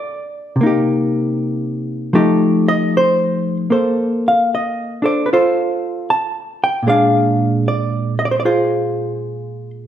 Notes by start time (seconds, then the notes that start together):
Already playing: A#3 D4 C5 D5
0.56 C3
0.61 A#3 D#4
0.66 G4
2.13 F3 A3 D#4 G4
2.68 D#5
2.97 C5
3.70 A#3 A4 C5
4.28 F5
4.55 D#5
5.02 D4 A4 C5 D5
5.26 B4
5.33 F4 A4 C5
6.10 A5
6.64 G5
6.83 A#2
6.87 G#3 D4 G#4 D5 F5
7.68 D5
8.19 D#5
8.25 D5
8.31 C5
8.40 D5
8.45 F4 G#4 C5